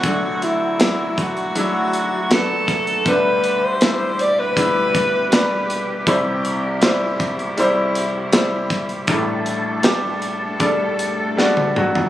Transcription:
Already playing: F#4
0.03 D2 D3 F#3 A3 D4 F#4 A4, kick, closed hi-hat
0.42 E4, closed hi-hat
0.79 F#3 D4 E4, snare, closed hi-hat
1.18 F#4, kick, closed hi-hat
1.37 closed hi-hat
1.55 F#3 D4 E4, closed hi-hat
1.93 closed hi-hat
2.30 F#3 D4 A4 B4, snare, closed hi-hat
2.68 kick, snare, closed hi-hat
2.87 closed hi-hat
3.06 D2 B2 D3 G3 D4 G4 B4, kick, closed hi-hat
3.44 closed hi-hat
3.65 C5
3.81 G3 D4 E4, snare, closed hi-hat
4.19 D5, closed hi-hat
4.40 B4
4.56 G3 D4 E4, kick, closed hi-hat
4.95 kick, closed hi-hat
5.32 G3 D4 B4, snare, closed hi-hat
5.70 closed hi-hat
6.07 C2 C3 G3 E4 C5, kick, closed hi-hat
6.45 closed hi-hat
6.82 G3 E4 C5, snare, closed hi-hat
7.20 kick, closed hi-hat
7.39 closed hi-hat
7.57 G3 E4 C5, closed hi-hat
7.95 closed hi-hat
8.32 G3 E4 C5, snare, closed hi-hat
8.70 kick, snare, closed hi-hat
8.89 closed hi-hat
9.07 A1 A2 G3 A3 D4 A4, kick, closed hi-hat
9.46 closed hi-hat
9.83 G3 D4 G4, snare, closed hi-hat
10.22 closed hi-hat
10.60 G3 D4 A4, kick, closed hi-hat
10.99 closed hi-hat
11.37 G3 D4 F#4, snare
11.57 high tom
11.76 F#3 F#4, mid tom
11.95 floor tom

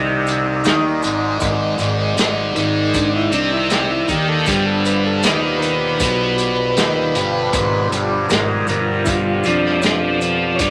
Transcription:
Already playing: C2 C3 D#3 C4 D#4 D5
0.27 closed hi-hat, maracas
0.64 D#2 D#3 D#4, snare, closed hi-hat, maracas
1.02 G#1 G#2 G#3, closed hi-hat, maracas
1.40 G#1 G#2 G#3, kick, closed hi-hat, maracas
1.78 G#1 G#2 G#3, closed hi-hat, maracas
2.17 G#1 G#2 G#3, snare, closed hi-hat, maracas
2.55 G#1 G#2 G#3, closed hi-hat
2.94 D4, kick, closed hi-hat, maracas
3.16 E4
3.32 C2 C3 C4 D4, closed hi-hat, maracas
3.53 E4
3.70 G4, snare, closed hi-hat, maracas
3.91 E4
4.08 D#2 D#3 D#4 G4, kick, closed hi-hat, maracas
4.29 A4
4.45 G1 G2 B2 F3 G3 B3 F4 G4 D5, kick, closed hi-hat, maracas
4.66 A4
4.85 B4, closed hi-hat, maracas
5.06 A4
5.23 D#2 D#3 D#4 B4, snare, closed hi-hat, maracas
5.58 A#4, closed hi-hat
5.63 B4, maracas
6.00 B1 B2 B3, kick, closed hi-hat, maracas
6.38 closed hi-hat, maracas
6.76 D#2 D#3 D#4, snare, closed hi-hat, maracas
7.15 G1 G2 G3, closed hi-hat, maracas
7.53 G#1 G#2 G#3, kick, closed hi-hat, maracas
7.91 G1 G2 G3, closed hi-hat, maracas
8.29 G#1 G#2 G#3 A#4, snare, closed hi-hat, maracas
8.67 G1 G2 G3 A#4, closed hi-hat, maracas
9.05 E4, kick, closed hi-hat, maracas
9.09 F4
9.44 F2 F3 F4, closed hi-hat, maracas
9.48 D4
9.66 snare
9.80 C#4 D4, closed hi-hat, maracas
9.84 snare
10.21 closed hi-hat, maracas
10.56 C#5, closed hi-hat, maracas
10.60 G1 G2 G3 D5, kick

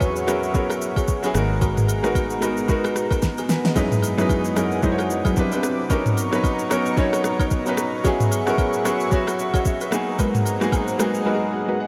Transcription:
Already playing: E2 F#3 B3 C#4 E4 G#4 B4 E5 F#5 C#6
0.00 kick, high agogo, shaker
0.16 shaker
0.26 F#3 B3 C#4 E4 F#4 G#4 A#4 C#5, cross-stick, high agogo, shaker
0.43 shaker
0.53 F#3 B3 C#4 E4 F#4 G#4 A#4 C#5, kick, shaker
0.70 cross-stick, high agogo, shaker
0.82 shaker
0.96 F#4 G#4 C#5, kick, high agogo, shaker
1.08 kick, shaker
1.23 F#3 B3 C#4 E4 G#4, high agogo, shaker
1.34 G#1 G#3 A#3 B3 D#4 F#4 A#4 A#5, cross-stick, shaker
1.41 B3
1.61 F#4 A#4 B4, kick, high agogo, shaker
1.77 mid tom, shaker
1.88 high agogo, shaker
2.03 G#3 B3 D#4 F#4 A#4 B4, cross-stick, shaker
2.15 kick, high agogo, shaker
2.30 shaker
2.41 G#3 B3 D#4 F#4 A#4 B4, cross-stick, high agogo, shaker
2.57 shaker
2.68 G#3 B3 D#4 F#4 A#4 B4, kick, shaker
2.84 cross-stick, high agogo, shaker
2.96 cross-stick, shaker
3.11 F#4 A#4 B4, kick, high agogo, shaker
3.22 kick, snare, shaker
3.38 G#4, high agogo, shaker
3.49 G#4 B4, snare, shaker
3.65 B4 D#5, snare, shaker
3.75 F#2 F#3 G#3 C#4 D#4 E4 F#4 G#4 B4 D#5 F#5 G#5 D#6, kick, high agogo, shaker
3.92 mid tom, shaker
4.02 high agogo, shaker
4.17 F#2 F#3 G#3 C#4 D#4 E4 G#4 B4 D#5, cross-stick, shaker
4.29 kick, high agogo, shaker
4.45 shaker
4.55 F#2 F#3 G#3 C#4 D#4 E4 G#4 A#4 B4 D#5, cross-stick, high agogo, shaker
4.71 shaker
4.82 F#2 F#3 G#3 C#4 D#4 E4 G#4 B4 C5 D#5, kick, shaker
4.92 C#5
4.98 cross-stick, high agogo, shaker
5.10 shaker
5.25 F#3 E4 G#4 B4 D#5, kick, high agogo, shaker
5.36 G3 C4 D4 E4 B4 B5 D6, kick, shaker
5.51 G3 C4 D4 E4 B4, high agogo, shaker
5.63 cross-stick, shaker
5.89 F#3 B3 C#4 D#4 A#4 C#5 D#5 A#5 C#6, kick, high agogo, shaker
6.06 mid tom, shaker
6.17 high agogo, shaker
6.31 F#3 B3 C#4 D#4 A#4 B4 C#5, cross-stick, shaker
6.44 kick, high agogo, shaker
6.59 shaker
6.69 F#3 B3 C#4 D#4 A#4 C#5, cross-stick, high agogo, shaker
6.86 shaker
6.96 F#3 B3 C#4 D#4 A#4 C#5, kick, shaker
7.13 cross-stick, high agogo, shaker
7.24 cross-stick, shaker
7.39 D#4 A#4 C#5, kick, high agogo, shaker
7.51 kick, shaker
7.65 F#3 B3 C#4 D#4 B4, high agogo, shaker
7.77 cross-stick, shaker
8.03 F#3 B3 C#4 E4 F#4 G#4 C#5 E5 F#5 C#6, kick, swell, high agogo, shaker
8.20 mid tom, shaker
8.32 high agogo, shaker
8.46 F#3 B3 C#4 E4 F#4 G#4 A#4 C#5, cross-stick, shaker
8.58 kick, high agogo, shaker
8.73 shaker
8.84 F#3 B3 C#4 E4 F#4 G#4 C#5, cross-stick, high agogo, shaker
9.00 shaker
9.10 F#3 B3 C#4 E4 F#4 G#4 C#5, kick, shaker
9.27 cross-stick, high agogo, shaker
9.39 shaker
9.54 F#4 G#4 C#5 D#5 F#5, kick, high agogo, shaker
9.65 C#5 E5, kick, shaker
9.81 G#4 B4, high agogo, shaker
9.91 F#3 A#3 B3 D#4 G#4 D#5 F#5 A#5, cross-stick, shaker
10.19 G#3 F#4 A#4 B4, kick, high agogo, shaker
10.35 mid tom, shaker
10.46 high agogo, shaker
10.60 F#3 G#3 A#3 B3 D#4 F#4 G#4 A#4 B4, cross-stick, shaker
10.72 kick, high agogo, low woodblock, shaker
10.88 shaker
10.98 F#3 G#3 A#3 B3 D#4 F#4 G#4 A#4 B4, cross-stick, high agogo, shaker
11.14 shaker
11.25 F#3 G#3 B3 D#4 F#4 A#4 B4
11.35 G#4
11.53 A#5
11.68 G#3 F#4 A#4 B4
11.80 F#5

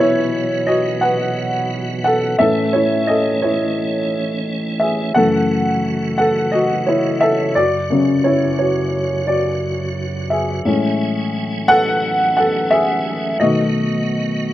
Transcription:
Already playing: B2 E3 F#3 B3 F#4 G#4 B4 C#5
0.00 E4
0.67 F#4 D#5
1.01 B4 F#5
2.04 A4 F#5
2.39 A2 E3 A3 C#4 A4 C#5 E5
2.73 E4 C#5
3.07 A4 D#5
3.42 E4 C#5
4.80 G#4 E5
5.14 F#2 C#3 E3 F#3 A3 F#4 A4 F#5
6.18 A4 F#5
6.52 F#4 D#5
6.87 E4 C#5
7.21 A4 E5
7.55 F#2 F#4 D5
7.90 F#2 C#3 F#3
8.24 E4 C#5
8.59 F#4 C#5
9.27 F#4 D5
10.30 G#4 E5
10.65 A2 E3 G#3 C#4 G#5
11.68 A4 F#5
12.37 A4 F#5
12.71 G#4 E5
13.40 B2 D#3 A3 B3 F#4 D#5

